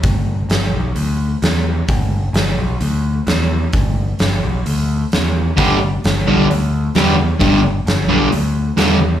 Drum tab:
HH |o-o-o-o-|o-o-o-o-|o-o-o-o-|o-o-o-o-|
SD |--o---o-|--o---o-|--o---o-|--o---o-|
BD |o-------|o-------|o-------|o-------|

HH |o-o-o-o-|
SD |--o---o-|
BD |o-------|